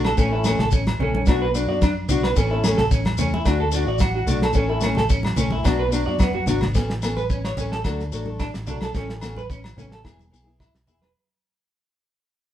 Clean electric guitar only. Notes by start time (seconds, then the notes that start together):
0.05 A4
0.19 C#4
0.32 E4
0.46 C#4
0.60 A4
0.73 C#4
1.00 C#4
1.14 C#4
1.27 D4
1.42 B4
1.55 D4
1.69 D5
1.82 D4
2.09 D4
2.23 B4
2.37 C#4
2.51 E4
2.64 C#4
2.77 A4
2.92 C#4
3.19 C#4
3.34 E4
3.46 D4
3.60 A4
3.74 D4
3.88 D5
4.01 F#4
4.15 F#4
4.28 D4
4.43 A4
4.55 C#4
4.70 E4
4.82 C#4
4.97 A4
5.10 C#4
5.37 C#4
5.52 E4
5.66 D4
5.79 B4
5.93 D4
6.06 D5
6.20 B3
6.34 F#4
6.47 D4
6.75 muted clean electric guitar stroke
7.17 B4
7.30 C#4
7.45 C#5
7.58 C#4
7.72 A4
8.40 D4
8.67 D4
8.82 A4
8.96 C#4
9.38 B4
9.51 C#4
9.78 C#4
9.92 A4
10.60 E4
10.88 E4
11.02 B4